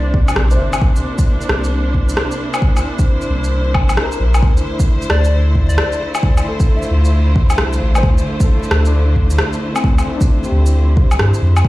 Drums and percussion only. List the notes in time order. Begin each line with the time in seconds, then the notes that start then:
0.14 kick
0.28 low woodblock, shaker
0.36 cross-stick
0.51 shaker
0.73 low woodblock, shaker
0.82 kick
0.96 shaker
1.18 kick, shaker
1.41 shaker
1.49 cross-stick
1.64 shaker
1.94 kick
2.09 shaker
2.17 cross-stick
2.31 shaker
2.54 low woodblock, shaker
2.62 kick
2.77 low woodblock, shaker
2.99 kick, shaker
3.21 shaker
3.44 shaker
3.74 kick, low woodblock
3.89 low woodblock, shaker
3.97 cross-stick
4.12 shaker
4.34 low woodblock, shaker
4.42 kick
4.57 shaker
4.80 kick, shaker
5.02 shaker
5.10 cross-stick
5.24 shaker
5.55 kick
5.70 shaker
5.78 cross-stick
5.92 shaker
6.15 low woodblock, shaker
6.23 kick
6.37 low woodblock, shaker
6.60 kick, shaker
6.82 shaker
7.05 shaker
7.36 kick
7.50 low woodblock, shaker
7.58 cross-stick
7.73 shaker
7.95 low woodblock, shaker
8.03 kick
8.18 shaker
8.40 kick, shaker
8.63 shaker
8.71 cross-stick
8.85 shaker
9.16 kick
9.30 shaker
9.38 cross-stick
9.53 shaker
9.76 low woodblock, shaker
9.84 kick
9.98 low woodblock, shaker
10.21 kick, shaker
10.44 shaker
10.66 shaker
10.97 kick
11.11 low woodblock, shaker
11.19 cross-stick
11.34 shaker
11.56 low woodblock, shaker
11.65 kick